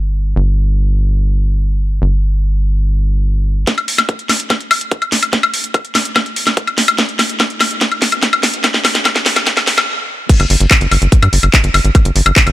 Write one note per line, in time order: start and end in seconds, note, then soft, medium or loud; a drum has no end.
0.00 0.34 G1 medium
0.36 2.00 G1 medium
2.02 3.65 G1 medium
3.67 kick loud
3.67 snare soft
3.67 closed hi-hat medium
3.78 closed hi-hat soft
3.78 high woodblock soft
3.88 open hi-hat loud
3.98 snare soft
3.98 closed hi-hat medium
3.98 high woodblock medium
4.09 kick loud
4.09 closed hi-hat medium
4.19 closed hi-hat soft
4.29 snare medium
4.29 open hi-hat loud
4.29 high woodblock soft
4.40 closed hi-hat medium
4.50 kick loud
4.50 snare medium
4.50 closed hi-hat medium
4.50 high woodblock soft
4.60 closed hi-hat soft
4.71 open hi-hat loud
4.71 high woodblock medium
4.81 closed hi-hat medium
4.92 kick loud
4.92 closed hi-hat medium
5.02 closed hi-hat soft
5.02 high woodblock soft
5.12 snare medium
5.12 open hi-hat loud
5.23 closed hi-hat medium
5.23 high woodblock soft
5.33 kick loud
5.33 snare medium
5.33 closed hi-hat medium
5.43 closed hi-hat soft
5.43 high woodblock medium
5.54 open hi-hat loud
5.64 closed hi-hat medium
5.74 kick loud
5.74 closed hi-hat medium
5.74 high woodblock soft
5.85 closed hi-hat soft
5.95 snare medium
5.95 open hi-hat loud
5.95 high woodblock soft
6.05 closed hi-hat medium
6.16 kick loud
6.16 snare medium
6.16 closed hi-hat medium
6.16 high woodblock medium
6.26 closed hi-hat soft
6.36 open hi-hat loud
6.47 snare medium
6.47 closed hi-hat medium
6.47 high woodblock soft
6.57 kick loud
6.57 closed hi-hat medium
6.67 closed hi-hat soft
6.67 high woodblock soft
6.78 snare medium
6.78 open hi-hat loud
6.88 closed hi-hat medium
6.88 high woodblock medium
6.98 kick loud
6.98 snare medium
6.98 closed hi-hat soft
7.09 closed hi-hat soft
7.19 snare medium
7.19 open hi-hat loud
7.19 high woodblock soft
7.29 closed hi-hat medium
7.40 kick loud
7.40 snare medium
7.40 closed hi-hat soft
7.40 high woodblock soft
7.50 closed hi-hat soft
7.61 snare medium
7.61 open hi-hat loud
7.61 high woodblock medium
7.71 closed hi-hat soft
7.81 kick loud
7.81 snare medium
7.81 closed hi-hat medium
7.92 closed hi-hat soft
7.92 high woodblock soft
8.02 snare medium
8.02 open hi-hat loud
8.12 closed hi-hat medium
8.12 high woodblock soft
8.23 kick loud
8.23 snare medium
8.23 closed hi-hat medium
8.33 closed hi-hat soft
8.33 high woodblock medium
8.43 snare medium
8.43 open hi-hat loud
8.54 closed hi-hat medium
8.64 kick loud
8.64 snare medium
8.64 closed hi-hat soft
8.64 high woodblock soft
8.74 snare medium
8.74 closed hi-hat soft
8.85 snare medium
8.85 open hi-hat loud
8.85 high woodblock soft
8.95 snare medium
8.95 closed hi-hat soft
9.05 kick loud
9.05 snare loud
9.05 closed hi-hat soft
9.05 high woodblock medium
9.16 snare medium
9.16 closed hi-hat soft
9.26 snare loud
9.26 open hi-hat loud
9.36 snare medium
9.36 closed hi-hat soft
9.36 high woodblock soft
9.47 kick loud
9.47 snare loud
9.47 closed hi-hat medium
9.57 snare medium
9.57 closed hi-hat soft
9.57 high woodblock soft
9.67 snare loud
9.67 open hi-hat loud
9.78 snare loud
9.78 closed hi-hat soft
9.78 high woodblock medium
10.29 kick loud
10.29 closed hi-hat medium
10.29 crash loud
10.40 10.46 G1 medium
10.40 closed hi-hat medium
10.40 high woodblock soft
10.50 10.56 G1 loud
10.50 open hi-hat loud
10.60 10.67 G1 medium
10.60 closed hi-hat medium
10.71 kick loud
10.71 clap loud
10.71 closed hi-hat loud
10.71 high woodblock medium
10.81 10.87 G1 medium
10.81 closed hi-hat medium
10.91 10.98 G1 loud
10.91 open hi-hat loud
10.91 high woodblock soft
11.02 11.08 G1 medium
11.02 closed hi-hat medium
11.12 kick loud
11.12 closed hi-hat medium
11.23 11.29 G2 medium
11.23 closed hi-hat medium
11.23 high woodblock medium
11.33 11.39 G1 loud
11.33 open hi-hat loud
11.43 11.49 G1 medium
11.43 closed hi-hat medium
11.43 high woodblock soft
11.54 kick loud
11.54 clap loud
11.54 closed hi-hat loud
11.64 11.70 G1 medium
11.64 closed hi-hat medium
11.74 11.80 G1 loud
11.74 open hi-hat loud
11.74 high woodblock medium
11.85 11.91 G#1 medium
11.85 closed hi-hat medium
11.95 kick loud
11.95 closed hi-hat medium
11.95 high woodblock soft
12.05 12.11 G1 medium
12.05 closed hi-hat medium
12.16 12.22 G1 loud
12.16 open hi-hat loud
12.26 12.32 G1 medium
12.26 closed hi-hat medium
12.26 high woodblock medium
12.36 kick loud
12.36 clap loud
12.36 closed hi-hat medium
12.47 12.52 G1 medium
12.47 closed hi-hat medium
12.47 high woodblock soft